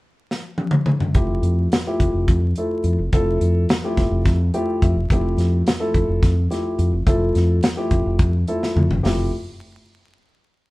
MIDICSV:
0, 0, Header, 1, 4, 480
1, 0, Start_track
1, 0, Key_signature, -1, "major"
1, 0, Tempo, 563910
1, 977, Time_signature, 7, 3, 24, 8
1, 9110, End_track
2, 0, Start_track
2, 0, Title_t, "Grand piano"
2, 0, Program_c, 0, 0
2, 981, Note_on_c, 0, 57, 69
2, 982, Note_on_c, 0, 64, 65
2, 982, Note_on_c, 0, 67, 85
2, 983, Note_on_c, 0, 53, 72
2, 1403, Note_off_c, 0, 57, 0
2, 1404, Note_off_c, 0, 64, 0
2, 1404, Note_off_c, 0, 67, 0
2, 1405, Note_off_c, 0, 53, 0
2, 1592, Note_on_c, 0, 64, 74
2, 1594, Note_on_c, 0, 53, 80
2, 1594, Note_on_c, 0, 67, 89
2, 1595, Note_on_c, 0, 57, 68
2, 2010, Note_off_c, 0, 53, 0
2, 2010, Note_off_c, 0, 64, 0
2, 2011, Note_off_c, 0, 57, 0
2, 2011, Note_off_c, 0, 67, 0
2, 2193, Note_on_c, 0, 57, 71
2, 2195, Note_on_c, 0, 64, 65
2, 2196, Note_on_c, 0, 53, 69
2, 2197, Note_on_c, 0, 69, 76
2, 2526, Note_off_c, 0, 57, 0
2, 2527, Note_off_c, 0, 53, 0
2, 2527, Note_off_c, 0, 64, 0
2, 2528, Note_off_c, 0, 69, 0
2, 2667, Note_on_c, 0, 53, 78
2, 2670, Note_on_c, 0, 57, 75
2, 2670, Note_on_c, 0, 64, 75
2, 2674, Note_on_c, 0, 69, 96
2, 3087, Note_off_c, 0, 53, 0
2, 3089, Note_off_c, 0, 57, 0
2, 3089, Note_off_c, 0, 64, 0
2, 3091, Note_off_c, 0, 69, 0
2, 3269, Note_on_c, 0, 57, 79
2, 3270, Note_on_c, 0, 53, 83
2, 3274, Note_on_c, 0, 64, 82
2, 3276, Note_on_c, 0, 67, 87
2, 3688, Note_off_c, 0, 57, 0
2, 3689, Note_off_c, 0, 53, 0
2, 3691, Note_off_c, 0, 64, 0
2, 3692, Note_off_c, 0, 67, 0
2, 3863, Note_on_c, 0, 64, 75
2, 3864, Note_on_c, 0, 53, 92
2, 3865, Note_on_c, 0, 79, 67
2, 3867, Note_on_c, 0, 57, 84
2, 3868, Note_on_c, 0, 67, 92
2, 4086, Note_off_c, 0, 79, 0
2, 4106, Note_on_c, 0, 76, 69
2, 4201, Note_off_c, 0, 53, 0
2, 4201, Note_off_c, 0, 64, 0
2, 4202, Note_off_c, 0, 57, 0
2, 4203, Note_off_c, 0, 67, 0
2, 4326, Note_off_c, 0, 76, 0
2, 4357, Note_on_c, 0, 53, 73
2, 4358, Note_on_c, 0, 67, 88
2, 4360, Note_on_c, 0, 64, 73
2, 4363, Note_on_c, 0, 57, 75
2, 4772, Note_off_c, 0, 53, 0
2, 4772, Note_off_c, 0, 67, 0
2, 4773, Note_off_c, 0, 64, 0
2, 4775, Note_off_c, 0, 57, 0
2, 4937, Note_on_c, 0, 53, 80
2, 4940, Note_on_c, 0, 57, 74
2, 4940, Note_on_c, 0, 69, 89
2, 4943, Note_on_c, 0, 64, 81
2, 5361, Note_off_c, 0, 53, 0
2, 5362, Note_off_c, 0, 57, 0
2, 5362, Note_off_c, 0, 69, 0
2, 5364, Note_off_c, 0, 64, 0
2, 5538, Note_on_c, 0, 64, 69
2, 5538, Note_on_c, 0, 67, 84
2, 5539, Note_on_c, 0, 53, 71
2, 5542, Note_on_c, 0, 57, 67
2, 5876, Note_off_c, 0, 64, 0
2, 5877, Note_off_c, 0, 53, 0
2, 5877, Note_off_c, 0, 67, 0
2, 5878, Note_off_c, 0, 57, 0
2, 6019, Note_on_c, 0, 57, 78
2, 6019, Note_on_c, 0, 64, 75
2, 6021, Note_on_c, 0, 53, 87
2, 6023, Note_on_c, 0, 69, 93
2, 6441, Note_off_c, 0, 57, 0
2, 6441, Note_off_c, 0, 64, 0
2, 6442, Note_off_c, 0, 53, 0
2, 6443, Note_off_c, 0, 69, 0
2, 6615, Note_on_c, 0, 67, 97
2, 6616, Note_on_c, 0, 53, 80
2, 6617, Note_on_c, 0, 57, 78
2, 6617, Note_on_c, 0, 64, 75
2, 7038, Note_off_c, 0, 67, 0
2, 7039, Note_off_c, 0, 53, 0
2, 7039, Note_off_c, 0, 57, 0
2, 7039, Note_off_c, 0, 64, 0
2, 7220, Note_on_c, 0, 57, 74
2, 7220, Note_on_c, 0, 64, 80
2, 7221, Note_on_c, 0, 69, 90
2, 7222, Note_on_c, 0, 53, 83
2, 7556, Note_off_c, 0, 53, 0
2, 7556, Note_off_c, 0, 57, 0
2, 7556, Note_off_c, 0, 64, 0
2, 7556, Note_off_c, 0, 69, 0
2, 7688, Note_on_c, 0, 67, 88
2, 7691, Note_on_c, 0, 64, 70
2, 7692, Note_on_c, 0, 53, 73
2, 7697, Note_on_c, 0, 57, 69
2, 7914, Note_off_c, 0, 67, 0
2, 7915, Note_off_c, 0, 64, 0
2, 7916, Note_off_c, 0, 53, 0
2, 7919, Note_off_c, 0, 57, 0
2, 9110, End_track
3, 0, Start_track
3, 0, Title_t, "Fingered electric bass"
3, 0, Program_c, 1, 33
3, 974, Note_on_c, 1, 29, 89
3, 1181, Note_off_c, 1, 29, 0
3, 1208, Note_on_c, 1, 41, 76
3, 1418, Note_off_c, 1, 41, 0
3, 1699, Note_on_c, 1, 29, 82
3, 1802, Note_off_c, 1, 29, 0
3, 1817, Note_on_c, 1, 29, 68
3, 1921, Note_off_c, 1, 29, 0
3, 1941, Note_on_c, 1, 41, 99
3, 2146, Note_off_c, 1, 41, 0
3, 2415, Note_on_c, 1, 41, 69
3, 2520, Note_off_c, 1, 41, 0
3, 2541, Note_on_c, 1, 29, 77
3, 2644, Note_off_c, 1, 29, 0
3, 2659, Note_on_c, 1, 29, 91
3, 2865, Note_off_c, 1, 29, 0
3, 2898, Note_on_c, 1, 41, 78
3, 3105, Note_off_c, 1, 41, 0
3, 3383, Note_on_c, 1, 29, 84
3, 3485, Note_off_c, 1, 29, 0
3, 3494, Note_on_c, 1, 29, 75
3, 3600, Note_off_c, 1, 29, 0
3, 3619, Note_on_c, 1, 41, 103
3, 3825, Note_off_c, 1, 41, 0
3, 4102, Note_on_c, 1, 41, 78
3, 4204, Note_off_c, 1, 41, 0
3, 4213, Note_on_c, 1, 29, 77
3, 4319, Note_off_c, 1, 29, 0
3, 4340, Note_on_c, 1, 29, 95
3, 4546, Note_off_c, 1, 29, 0
3, 4573, Note_on_c, 1, 41, 79
3, 4781, Note_off_c, 1, 41, 0
3, 5058, Note_on_c, 1, 29, 87
3, 5161, Note_off_c, 1, 29, 0
3, 5178, Note_on_c, 1, 29, 73
3, 5281, Note_off_c, 1, 29, 0
3, 5296, Note_on_c, 1, 41, 101
3, 5502, Note_off_c, 1, 41, 0
3, 5775, Note_on_c, 1, 41, 70
3, 5879, Note_off_c, 1, 41, 0
3, 5894, Note_on_c, 1, 29, 76
3, 5998, Note_off_c, 1, 29, 0
3, 6010, Note_on_c, 1, 29, 90
3, 6218, Note_off_c, 1, 29, 0
3, 6259, Note_on_c, 1, 41, 84
3, 6463, Note_off_c, 1, 41, 0
3, 6732, Note_on_c, 1, 29, 83
3, 6836, Note_off_c, 1, 29, 0
3, 6856, Note_on_c, 1, 29, 79
3, 6958, Note_off_c, 1, 29, 0
3, 6972, Note_on_c, 1, 41, 90
3, 7178, Note_off_c, 1, 41, 0
3, 7455, Note_on_c, 1, 41, 73
3, 7557, Note_off_c, 1, 41, 0
3, 7570, Note_on_c, 1, 29, 79
3, 7674, Note_off_c, 1, 29, 0
3, 7691, Note_on_c, 1, 29, 87
3, 7915, Note_off_c, 1, 29, 0
3, 9110, End_track
4, 0, Start_track
4, 0, Title_t, "Drums"
4, 265, Note_on_c, 9, 38, 57
4, 350, Note_off_c, 9, 38, 0
4, 492, Note_on_c, 9, 48, 74
4, 577, Note_off_c, 9, 48, 0
4, 605, Note_on_c, 9, 47, 81
4, 690, Note_off_c, 9, 47, 0
4, 731, Note_on_c, 9, 47, 88
4, 816, Note_off_c, 9, 47, 0
4, 855, Note_on_c, 9, 43, 87
4, 940, Note_off_c, 9, 43, 0
4, 974, Note_on_c, 9, 42, 74
4, 977, Note_on_c, 9, 36, 100
4, 1059, Note_off_c, 9, 42, 0
4, 1062, Note_off_c, 9, 36, 0
4, 1217, Note_on_c, 9, 42, 58
4, 1302, Note_off_c, 9, 42, 0
4, 1462, Note_on_c, 9, 42, 79
4, 1472, Note_on_c, 9, 38, 108
4, 1547, Note_off_c, 9, 42, 0
4, 1557, Note_off_c, 9, 38, 0
4, 1702, Note_on_c, 9, 36, 71
4, 1706, Note_on_c, 9, 42, 59
4, 1787, Note_off_c, 9, 36, 0
4, 1791, Note_off_c, 9, 42, 0
4, 1941, Note_on_c, 9, 36, 92
4, 1942, Note_on_c, 9, 42, 78
4, 2026, Note_off_c, 9, 36, 0
4, 2027, Note_off_c, 9, 42, 0
4, 2175, Note_on_c, 9, 42, 58
4, 2260, Note_off_c, 9, 42, 0
4, 2416, Note_on_c, 9, 42, 60
4, 2501, Note_off_c, 9, 42, 0
4, 2660, Note_on_c, 9, 42, 73
4, 2662, Note_on_c, 9, 36, 92
4, 2745, Note_off_c, 9, 42, 0
4, 2748, Note_off_c, 9, 36, 0
4, 2903, Note_on_c, 9, 42, 62
4, 2988, Note_off_c, 9, 42, 0
4, 3141, Note_on_c, 9, 42, 79
4, 3151, Note_on_c, 9, 38, 113
4, 3226, Note_off_c, 9, 42, 0
4, 3236, Note_off_c, 9, 38, 0
4, 3382, Note_on_c, 9, 36, 74
4, 3382, Note_on_c, 9, 42, 59
4, 3391, Note_on_c, 9, 38, 33
4, 3467, Note_off_c, 9, 42, 0
4, 3468, Note_off_c, 9, 36, 0
4, 3476, Note_off_c, 9, 38, 0
4, 3621, Note_on_c, 9, 42, 78
4, 3622, Note_on_c, 9, 36, 91
4, 3630, Note_on_c, 9, 38, 29
4, 3706, Note_off_c, 9, 42, 0
4, 3707, Note_off_c, 9, 36, 0
4, 3715, Note_off_c, 9, 38, 0
4, 3863, Note_on_c, 9, 42, 53
4, 3948, Note_off_c, 9, 42, 0
4, 4104, Note_on_c, 9, 36, 70
4, 4106, Note_on_c, 9, 42, 56
4, 4189, Note_off_c, 9, 36, 0
4, 4191, Note_off_c, 9, 42, 0
4, 4342, Note_on_c, 9, 36, 93
4, 4346, Note_on_c, 9, 42, 66
4, 4427, Note_off_c, 9, 36, 0
4, 4431, Note_off_c, 9, 42, 0
4, 4581, Note_on_c, 9, 42, 57
4, 4591, Note_on_c, 9, 38, 35
4, 4667, Note_off_c, 9, 42, 0
4, 4676, Note_off_c, 9, 38, 0
4, 4823, Note_on_c, 9, 42, 79
4, 4832, Note_on_c, 9, 38, 108
4, 4908, Note_off_c, 9, 42, 0
4, 4917, Note_off_c, 9, 38, 0
4, 5060, Note_on_c, 9, 36, 71
4, 5060, Note_on_c, 9, 42, 56
4, 5145, Note_off_c, 9, 36, 0
4, 5145, Note_off_c, 9, 42, 0
4, 5300, Note_on_c, 9, 36, 93
4, 5302, Note_on_c, 9, 42, 78
4, 5311, Note_on_c, 9, 38, 32
4, 5385, Note_off_c, 9, 36, 0
4, 5387, Note_off_c, 9, 42, 0
4, 5397, Note_off_c, 9, 38, 0
4, 5544, Note_on_c, 9, 42, 54
4, 5553, Note_on_c, 9, 38, 33
4, 5629, Note_off_c, 9, 42, 0
4, 5638, Note_off_c, 9, 38, 0
4, 5778, Note_on_c, 9, 42, 59
4, 5863, Note_off_c, 9, 42, 0
4, 6015, Note_on_c, 9, 36, 96
4, 6015, Note_on_c, 9, 42, 82
4, 6100, Note_off_c, 9, 36, 0
4, 6100, Note_off_c, 9, 42, 0
4, 6257, Note_on_c, 9, 42, 67
4, 6267, Note_on_c, 9, 38, 33
4, 6342, Note_off_c, 9, 42, 0
4, 6352, Note_off_c, 9, 38, 0
4, 6492, Note_on_c, 9, 42, 87
4, 6501, Note_on_c, 9, 38, 110
4, 6577, Note_off_c, 9, 42, 0
4, 6587, Note_off_c, 9, 38, 0
4, 6730, Note_on_c, 9, 42, 58
4, 6733, Note_on_c, 9, 36, 73
4, 6815, Note_off_c, 9, 42, 0
4, 6818, Note_off_c, 9, 36, 0
4, 6970, Note_on_c, 9, 42, 75
4, 6973, Note_on_c, 9, 36, 96
4, 7055, Note_off_c, 9, 42, 0
4, 7058, Note_off_c, 9, 36, 0
4, 7214, Note_on_c, 9, 42, 58
4, 7299, Note_off_c, 9, 42, 0
4, 7346, Note_on_c, 9, 38, 61
4, 7431, Note_off_c, 9, 38, 0
4, 7461, Note_on_c, 9, 47, 62
4, 7546, Note_off_c, 9, 47, 0
4, 7581, Note_on_c, 9, 43, 87
4, 7666, Note_off_c, 9, 43, 0
4, 7703, Note_on_c, 9, 46, 81
4, 7713, Note_on_c, 9, 38, 80
4, 7788, Note_off_c, 9, 46, 0
4, 7798, Note_off_c, 9, 38, 0
4, 9110, End_track
0, 0, End_of_file